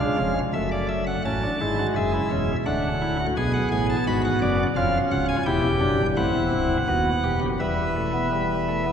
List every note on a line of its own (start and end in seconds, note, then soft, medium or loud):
0.00 0.34 G#3 medium
0.00 0.16 D4 medium
0.00 0.39 F5 medium
0.18 0.40 F1 medium
0.18 0.40 F2 medium
0.18 0.40 C#4 medium
0.53 1.15 F#1 medium
0.53 1.15 F#2 medium
0.53 1.15 A3 medium
0.53 0.69 E5 medium
0.71 0.87 D5 medium
0.88 1.04 E5 medium
1.06 1.22 F#5 medium
1.25 1.47 A1 medium
1.25 1.47 A2 medium
1.25 1.47 F#3 medium
1.25 1.40 C#4 medium
1.25 1.86 A5 medium
1.43 1.58 D4 medium
1.60 1.82 G#1 medium
1.60 1.82 G#2 medium
1.60 2.51 G#3 medium
1.60 1.76 E4 medium
1.79 1.94 F#4 medium
1.96 2.18 F#1 medium
1.96 2.18 F#2 medium
1.96 2.11 G#4 medium
1.96 2.56 E5 medium
2.13 2.28 E4 medium
2.31 2.52 E1 medium
2.31 2.53 E2 medium
2.31 2.52 C#4 medium
2.66 3.26 D1 medium
2.66 3.26 D2 medium
2.66 3.26 A3 medium
2.66 2.87 D4 medium
2.66 3.26 F#5 medium
3.01 3.16 E4 medium
3.20 3.34 F#4 medium
3.37 3.58 B1 medium
3.37 3.58 B2 medium
3.37 4.56 B3 medium
3.37 3.96 G#4 medium
3.37 3.51 G#5 medium
3.53 3.68 F#5 medium
3.72 3.93 A1 medium
3.72 3.93 A2 medium
3.72 3.86 G#5 medium
3.89 4.04 A5 medium
4.07 4.28 G#1 medium
4.07 4.28 G#2 medium
4.07 4.66 F#4 medium
4.07 4.21 B5 medium
4.25 4.39 F#5 medium
4.42 4.63 F#1 medium
4.42 4.63 F#2 medium
4.42 4.63 D5 medium
4.76 4.98 F1 medium
4.76 4.97 F2 medium
4.76 5.36 C#4 medium
4.76 5.36 F4 medium
4.76 4.97 F5 loud
5.11 5.32 C#1 medium
5.11 5.33 C#2 medium
5.11 5.26 F#5 medium
5.28 5.43 G#5 medium
5.46 5.61 E1 medium
5.46 5.61 E2 medium
5.46 5.67 E4 medium
5.46 6.06 G4 medium
5.46 6.06 G5 medium
5.63 5.78 E1 medium
5.63 5.78 E2 medium
5.80 5.95 F#1 medium
5.80 5.95 F#2 medium
5.80 6.02 D4 medium
5.98 6.13 G1 medium
5.98 6.13 G2 medium
6.16 6.31 A1 medium
6.16 6.31 A2 medium
6.16 6.77 C4 medium
6.16 6.77 E4 medium
6.16 7.39 F#5 medium
6.34 6.49 E1 medium
6.34 6.49 E2 medium
6.52 6.74 C1 medium
6.52 6.74 C2 medium
6.88 7.10 D#1 medium
6.88 7.10 D#2 medium
6.88 7.49 B3 medium
6.88 7.10 F#4 medium
7.24 7.39 E1 medium
7.24 7.39 E2 medium
7.24 7.46 G4 medium
7.41 7.56 F#1 medium
7.41 7.57 F#2 medium
7.60 8.92 E1 medium
7.60 8.92 E2 medium
7.60 7.82 G3 medium
7.60 8.92 B4 medium
7.60 8.92 E5 medium
7.96 8.11 A3 medium
8.13 8.28 B3 medium
8.32 8.54 G3 medium
8.68 8.83 A3 medium
8.86 8.92 B3 medium